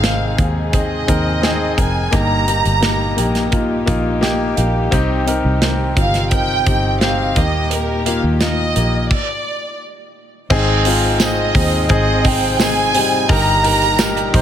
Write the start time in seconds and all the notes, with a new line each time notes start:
Already playing: G#1 G#2 C3 D#3 G#3 C4 D#4 G#4 F5
0.03 C4 D#4 A#4, snare, closed hi-hat
0.38 D#2 C4 D#4 G#4, kick, closed hi-hat
0.72 C4 D#4 G#4 D#5, kick, closed hi-hat
1.07 D#2 C4 D#4 A#4, kick, closed hi-hat
1.42 C4 D#4 G#4, snare, closed hi-hat
1.77 F1 C4 D#4 A#4 G#5, kick, closed hi-hat
2.11 G1 G2 A#2 G3 A#3 D#4 G4 A#5, kick, closed hi-hat
2.46 A#3 D#4 G4, closed hi-hat
2.65 G1, closed hi-hat
2.81 A#3 D#4 G4, snare, closed hi-hat
3.16 A#1 A#3 D#4 G4, closed hi-hat
3.35 snare, closed hi-hat
3.51 A#3 D#4 F4, kick, closed hi-hat
3.86 A#1 A#3 D#4 F4, kick, closed hi-hat
4.21 A#3 D#4 G4 G5, snare, closed hi-hat
4.56 A#1 A#3 D#4 G4 F5, closed hi-hat
4.91 C2 C3 D#3 C4 D#4 G4, kick, closed hi-hat
5.26 C4 D#4 A#4, closed hi-hat
5.44 C2
5.61 C4 D#4 A#4, snare, closed hi-hat
5.96 G1 C4 D#4 F4 F5, kick, closed hi-hat
6.14 snare, closed hi-hat
6.31 C4 D#4 A#4 G5, kick, closed hi-hat
6.66 G1 C4 D#4 G4, kick, closed hi-hat
7.01 C4 D#4 G4 F5, snare, closed hi-hat
7.36 D#2 A#2 D#3 A#3 D#4 G4 D#5, kick, closed hi-hat
7.71 A#4, closed hi-hat
8.06 A#3 D#4 F4 F5, closed hi-hat
8.24 D#2
8.41 A#3 D#4 F4 D#5, snare, closed hi-hat
8.76 A#1 A#3 D#4 G4, closed hi-hat
9.11 D5, kick, crash
10.50 G#1 G#2 C3 D#3 C4 D#4 G#4 C5, kick, crash
10.85 C4 D#4 F4, hi-hat pedal, open hi-hat
11.15 F5
11.20 C4 D#4 G#4 D#5, snare, hi-hat pedal, open hi-hat, tambourine
11.54 D#2 C4 D#4 G#4, kick, hi-hat pedal, open hi-hat
11.89 G#1 C4 D#4 G#4 D#5, kick, hi-hat pedal, open hi-hat
12.24 C4 D#4 G#4 G5, kick, hi-hat pedal, open hi-hat
12.59 C4 D#4 G#4 G#5, snare, hi-hat pedal, open hi-hat, tambourine
12.94 F1 G3 C4 D#4, hi-hat pedal, open hi-hat
13.29 G1 G2 A#2 D#3 G3 D#4 G4 A#4 A#5, kick, hi-hat pedal, open hi-hat
13.63 D#4 G4 A#4, hi-hat pedal, open hi-hat
13.82 open hi-hat
13.98 D#4 G4 A#4, snare, hi-hat pedal, open hi-hat, tambourine
14.16 hi-hat pedal
14.33 A#1 D#4 G4 C5, kick, hi-hat pedal, open hi-hat